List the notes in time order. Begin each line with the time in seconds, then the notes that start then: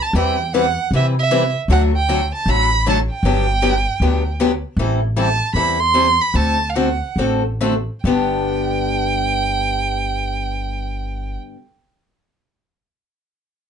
0.02 A5
0.13 E2 E3 G3 C4 E4 B4
0.18 G5
0.54 E3 G3 C4 E4 B4 F#5
0.91 C3 E3 G3 C4 E4 B4
0.96 E5
1.19 E5
1.31 E3 G3 C4 E4 B4
1.68 D2 D3 F#3 A3 D4 F#4 F#5
1.96 G5
2.09 D3 F#3 A3 D4 F#4
2.35 A5
2.46 A1 D3 F#3 A3 D4 F#4
2.50 B5
2.86 D3 F#3 A3 D4 F#4 A5
3.12 G5
3.23 G1 D3 F#3 B3 D4 G4
3.62 D3 F#3 B3 D4 G4
4.00 D2 D3 F#3 B3 D4 G4
4.40 D3 F#3 B3 D4 G4
4.77 A1 E3 G3 C4 E4 A4
5.16 E3 G3 C4 E4 A4 A5
5.53 E2 E3 G3 C4 E4 A4 B5
5.70 B5
5.80 C6
5.94 E3 G3 C4 E4 A4
6.21 B5
6.34 D2 D3 A3 C4 F#4 A4 A5
6.69 F5
6.74 D3 A3 C4 F#4 A4 F#5
7.16 A1 D3 A3 C4 F#4 A4
7.61 D3 A3 C4 F#4 A4
8.04 G1 G2 D3 B3 D4 G4 G5